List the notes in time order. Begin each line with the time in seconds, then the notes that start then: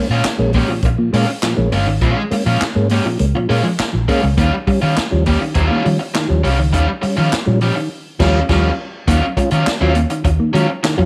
0.09 A#2 G#3 C#4 F4, muted clean electric guitar stroke
0.24 muted fingered electric bass stroke, muted overdriven electric guitar stroke, snare, clap, closed hi-hat
0.38 A#1 G#3 A#3 C#4
0.53 G#3 A#3 C#4 G4, kick, open hi-hat
0.69 A#2 F3, muted overdriven electric guitar stroke
0.82 A#1 A#3 C#4, muted clean electric guitar stroke, muted overdriven electric guitar stroke, kick, closed hi-hat
0.98 A#2 F3 A#3
1.13 A#2 G#3 A#3 C#4 F4, open hi-hat
1.28 muted overdriven electric guitar stroke
1.42 A#2 F3, muted overdriven electric guitar stroke, snare, clap, closed hi-hat
1.57 A#1 F3 G#3 A#3 C#4
1.72 G1 G#3 A#3 C#4 F4, muted clean electric guitar stroke, open hi-hat
1.87 G#1 D#3, muted overdriven electric guitar stroke
2.01 A#1 A#2 F3 G#3 C#4 F4, kick, closed hi-hat
2.17 muted clean electric guitar stroke, muted overdriven electric guitar stroke
2.31 G#3 A#3 C#4, muted fingered electric bass stroke, muted overdriven electric guitar stroke, open hi-hat
2.46 A#2 F3 G#3 C#4 F4
2.61 muted clean electric guitar stroke, muted fingered electric bass stroke, muted overdriven electric guitar stroke, snare, clap, closed hi-hat
2.75 G#2 G#3 A#3 C#4
2.89 G#3 A#3 C#4 G4, open hi-hat
3.05 A#2 F3, muted overdriven electric guitar stroke
3.19 C#2 G#3 A#3 C#4, closed hi-hat
3.35 A#2 F3, muted overdriven electric guitar stroke
3.49 A#2 G#3 A#3 C#4 F4, muted clean electric guitar stroke, open hi-hat
3.64 F3, muted overdriven electric guitar stroke
3.79 muted fingered electric bass stroke, muted overdriven electric guitar stroke, snare, clap, closed hi-hat
3.93 A#1 F3
4.08 G#3 A#3 C#4 F4, muted clean electric guitar stroke, kick, open hi-hat
4.23 C#2 G#3, muted overdriven electric guitar stroke
4.37 D#2 D#3 G3 A#3 C#4 F4, kick, closed hi-hat
4.53 muted overdriven electric guitar stroke
4.67 G3 C#4, muted overdriven electric guitar stroke, muted fingered electric bass stroke, kick, open hi-hat
4.82 D#3 G3 C#4 F4, muted clean electric guitar stroke
4.97 muted overdriven electric guitar stroke, muted fingered electric bass stroke, snare, clap, closed hi-hat
5.11 D#2 F3 G3 C#4
5.26 G3 A#3 C#4 G4, kick, open hi-hat
5.41 D#3, muted overdriven electric guitar stroke
5.55 D#2 F#3 G3 C4 C#4 E4, muted clean electric guitar stroke, kick, closed hi-hat
5.66 G3 C#4 F4
5.70 D#3 A#3
5.85 D#3 F3 G3 C#4, muted overdriven electric guitar stroke, open hi-hat
5.99 muted overdriven electric guitar stroke
6.14 D#3, muted overdriven electric guitar stroke, snare, clap, closed hi-hat
6.29 D#2 F3 G3 C#4
6.44 C2 G3 C#4 F4, muted clean electric guitar stroke, open hi-hat
6.58 C#2 D#3, muted overdriven electric guitar stroke
6.73 D#2 D#3 G3 C#4 F4, kick, closed hi-hat
6.88 muted overdriven electric guitar stroke, muted clean electric guitar stroke
7.02 G3 C#4, muted overdriven electric guitar stroke, muted fingered electric bass stroke, open hi-hat
7.17 D#3 F3 G3 C#4 F4
7.32 muted overdriven electric guitar stroke, muted clean electric guitar stroke, muted fingered electric bass stroke, snare, clap, closed hi-hat
7.46 A#2 F3 G3 C#4
7.61 F3 G3 C#4 G4, open hi-hat
7.76 D#3, muted overdriven electric guitar stroke
8.19 D#2 F3 G3 C#4 F4, kick, snare, crash
8.49 D#2 F3 G3 C#4 F4, kick, snare, crash
9.08 D#2 D#3 F#3 A#3 C#4 F4, kick, closed hi-hat
9.37 G#3 C#4 F4, muted fingered electric bass stroke, muted overdriven electric guitar stroke, kick, closed hi-hat
9.51 D#3 F#3 C#4 F4, muted clean electric guitar stroke, closed hi-hat
9.66 muted fingered electric bass stroke, muted overdriven electric guitar stroke, snare, clap, closed hi-hat
9.81 D#2 F#3 C#4 F4
9.95 A#3, muted overdriven electric guitar stroke, closed hi-hat
10.10 D#3, muted overdriven electric guitar stroke, closed hi-hat
10.24 D#2 C#4 F4, muted overdriven electric guitar stroke, muted clean electric guitar stroke, kick, closed hi-hat
10.39 D#3 A#3
10.53 D#3 F#3 G#3 C#4 F4, closed hi-hat
10.69 muted overdriven electric guitar stroke
10.83 D#3, muted overdriven electric guitar stroke, snare, clap, closed hi-hat
10.97 F2 F#3 C#4 F4, muted overdriven electric guitar stroke